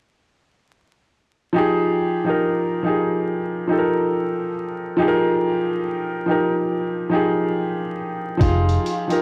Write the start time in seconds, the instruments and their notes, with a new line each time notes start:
1.53 felt piano F3 D#4 G4
1.58 felt piano G#4
2.24 felt piano F3 D#4 G4
2.29 felt piano A#4
2.82 felt piano F3 D#4 G4
2.87 felt piano G#4
3.67 felt piano F3 D#4 G4
3.72 felt piano A4
3.78 felt piano A#4
4.96 felt piano F3 D#4 G4
5.01 felt piano G#4
5.08 felt piano A#4
6.26 felt piano F3 D#4 G4
6.31 felt piano A#4
7.10 felt piano F3 D#4 G4
7.15 felt piano G#4
8.37 felt piano F3 D#4 G4, kick, closed hi-hat
8.42 fingered electric bass F1, clean electric guitar F4, felt piano G#4
8.69 closed hi-hat
8.86 closed hi-hat
9.08 felt piano F3 D#4 G4, closed hi-hat
9.13 felt piano A#4